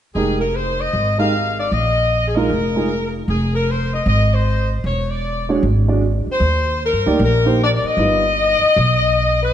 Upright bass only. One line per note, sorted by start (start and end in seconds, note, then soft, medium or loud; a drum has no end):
0.15 0.90 F1 medium
0.93 1.68 G#1 medium
1.72 2.46 A#1 medium
2.49 3.24 F1 medium
3.28 4.03 F1 medium
4.06 4.81 G#1 medium
4.84 5.59 E1 medium
5.63 6.23 G#1 medium
6.27 muted upright bass stroke soft
6.40 6.89 D#2 medium
6.93 7.06 G2 medium
7.06 7.19 D2 medium
7.19 7.80 A#1 medium
7.83 muted upright bass stroke soft
7.97 8.58 G1 medium
8.62 muted upright bass stroke soft
8.76 9.51 B1 medium